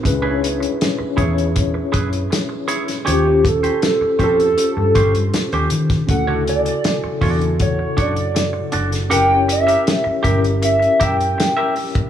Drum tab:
HH |x-xxx-xxx-xxx-xx|x-xxx-xxx-xxxxxx|x-xxx-oxx-xxx-xx|x-xxx-xxxxxxx-ox|
SD |----o-------o--o|----o-------o--o|----o-------o--o|----o-------o---|
BD |o-----o-o-o-----|--o---o---o----o|o-----o-o-o-----|------o---o----o|